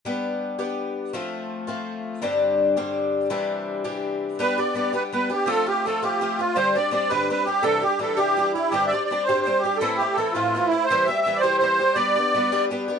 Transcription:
<<
  \new Staff \with { instrumentName = "Accordion" } { \time 6/8 \key g \mixolydian \tempo 4. = 111 r2. | r2. | r2. | r2. |
b'8 d''8 d''8 b'8 b'8 g'8 | a'8 g'8 a'8 g'4 f'8 | c''8 d''8 d''8 b'8 b'8 g'8 | a'8 g'8 a'8 g'4 e'8 |
g'16. e''32 d''8 d''8 c''8 c''8 g'8 | a'8 g'8 a'8 f'4 e'8 | c''8 e''8 e''16. d''32 c''8 c''4 | d''2 r4 | }
  \new Staff \with { instrumentName = "Twelve-string acoustic guitar" } { \time 6/8 \key g \mixolydian <g b d' g'>4. <g b d' g'>4. | <f a c' f'>4. <f a c' f'>4. | <g, d g c' d' g'>4. <g, d g c' d' g'>4. | <c e g d' g'>4. <c e g d' g'>4. |
<g b d' g'>8 <b d' g'>8 <g b d' g'>8 <g b d' g'>8 <g b d' g'>8 <b d' g'>8 | <f a c' f'>8 <a c' f'>8 <f a c' f'>8 <f a c' f'>8 <f a c' f'>8 <a c' f'>8 | <g, d g c' d' g'>8 <g c' d' g'>8 <g c' d' g'>8 <g, d g c' d' g'>8 <g c' d' g'>8 <g c' d' g'>8 | <c e g d' g'>8 <g d' g'>8 <e g d' g'>8 <c e g d' g'>8 <e g d' g'>8 <g d' g'>8 |
<g, d g c' d' g'>8 <g c' d' g'>8 <g c' d' g'>8 <g, d g c' d' g'>8 <g c' d' g'>8 <g c' d' g'>8 | <a, e a c' e'>8 <a c' e'>8 <e a c' e'>8 <a, e a c' e'>8 <e a c' e'>8 <a c' e'>8 | <c e g c' g'>8 <g c' g'>8 <e g c' g'>8 <c e g c' g'>8 <e g c' g'>8 <g c' g'>8 | <g b d' g'>8 <b d' g'>8 <g b d' g'>8 <g b d' g'>8 <g b d' g'>8 <b d' g'>8 | }
>>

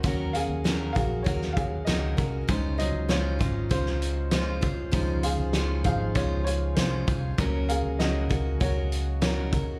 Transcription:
<<
  \new Staff \with { instrumentName = "Grand piano" } { \time 4/4 \key des \major \tempo 4 = 98 << { r8 <aes' f''>4 <aes' f''>8 <ges' des''>8 <aes' f''>8 <ges' ees''>8. r16 | r8 <ges ees''>8 <f' des''>4 <f' c''>4 <f' c''>8. r16 | r8 <aes' f''>4 <aes' f''>8 <f' des''>8 <f' des''>8 <f' c''>8. r16 | r8 <aes' f''>8 <ges' ees''>4 <ges' des''>4 <ges' des''>8. r16 | } \\ { <ges des' ges'>4. <ges des' ges'>8 r2 | <aes ees' c''>4. r2 r8 | <f ees' c''>8 r4 <f ees' c''>8 r2 | <ges bes des'>8 r2. r8 | } >> }
  \new Staff \with { instrumentName = "Steel-string acoustic guitar" } { \time 4/4 \key des \major <ees ges des' ges' bes'>8 <des' ges' bes'>8 <ees ges des' ges' bes'>8 <des' ges' bes'>8 <ges des' ges' bes'>4 <ees ges des' ges' bes'>8 <des' ges' bes'>8 | <des aes des' f' c''>8 <des' f' c''>8 <des aes des' f' c''>8 <des' f' c''>8 <aes des' f' c''>4 <des aes des' f' c''>8 <des' f' c''>8 | <des aes des' f' c''>8 <des' f' c''>8 <des aes des' f' c''>8 <des' f' c''>8 <aes des' f' c''>4 <des aes des' f' c''>8 <des' f' c''>8 | <des ges des' ges' bes'>8 <des' ges' bes'>8 <des ges des' ges' bes'>8 <des' ges' bes'>8 <ges des' ges' bes'>4 <des ges des' ges' bes'>8 <des' ges' bes'>8 | }
  \new Staff \with { instrumentName = "Fingered electric bass" } { \clef bass \time 4/4 \key des \major ees,8. ees,8. bes,,8 ees,4 des,8 c,8 | des,8. des,8. aes,,8 des,2 | des,8. des,8. aes,,8 des,4 c,8 c,8 | des,8. des,8. des,8 des,2 | }
  \new DrumStaff \with { instrumentName = "Drums" } \drummode { \time 4/4 <hh bd>8 hh8 <hh sn>8 <hh bd>8 <hh bd>16 sn16 <hh bd>8 <hh sn>8 <hh bd>8 | <hh bd>8 hh8 <hh sn>8 <hh bd>8 <hh bd>16 sn16 hh8 <hh sn>8 <hh bd>8 | <hh bd>8 hh8 <hh sn>8 <hh bd>8 <hh bd>8 hh8 <hh sn>8 <hh bd>8 | <hh bd>8 hh8 <hh sn>8 <hh bd>8 <hh bd>8 hh8 <hh sn>8 <hh bd>8 | }
>>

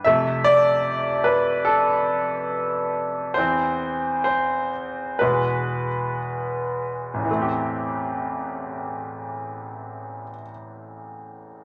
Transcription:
<<
  \new Staff \with { instrumentName = "Grand piano" } { \time 4/4 \key a \minor \tempo 4 = 62 e''8 d''4 b'8 a'2 | c''4 c''4 b'4 r4 | r1 | }
  \new Staff \with { instrumentName = "Grand piano" } { \clef bass \time 4/4 \key a \minor <f, c a>1 | <e, e c'>4. r8 <e, b, gis>8 r4. | <a,, e, e a c' g'>1 | }
>>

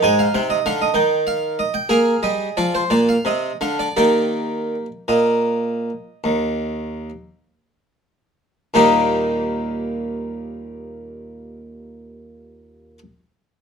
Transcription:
<<
  \new Staff \with { instrumentName = "Harpsichord" } { \time 12/8 \key ees \major \tempo 4. = 50 << { aes''16 f''16 g''16 ees''16 f''16 ees''16 g''8 f''8 ees''16 g''16 f''8 ees''8 d''16 c''16 d''16 f''16 ees''8 f''16 d''16 | d''4. ees''2. r4. | <ees, bes, g bes ees' g'>1. | } \\ { ees'2. aes'2. | r1. | r1. | } >> }
  \new Staff \with { instrumentName = "Harpsichord" } { \clef bass \time 12/8 \key ees \major aes,8 c8 d8 ees4. bes8 g8 f8 bes,8 c8 d8 | <ees bes g'>4. bes,4. ees,4. r4. | r1. | }
>>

